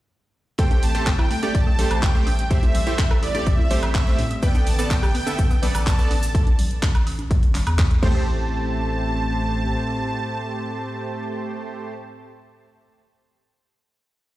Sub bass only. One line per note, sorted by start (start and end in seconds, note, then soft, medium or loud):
0.83 1.14 A1 loud
1.19 1.28 G1 medium
1.55 1.86 A1 medium
1.91 2.00 A1 loud
2.27 2.58 A1 medium
2.75 2.84 A1 medium
3.11 3.42 A1 medium
3.47 3.78 A1 loud
3.83 4.14 A1 medium
4.19 4.28 A2 medium
4.67 4.98 A1 loud
5.03 5.12 G1 medium
5.39 5.70 A1 loud
5.75 5.84 A1 loud
6.11 6.42 A1 medium
6.59 6.68 A1 medium
6.95 7.26 A1 medium
7.31 7.62 G1 medium
7.67 7.98 E2 loud
8.03 9.67 A1 loud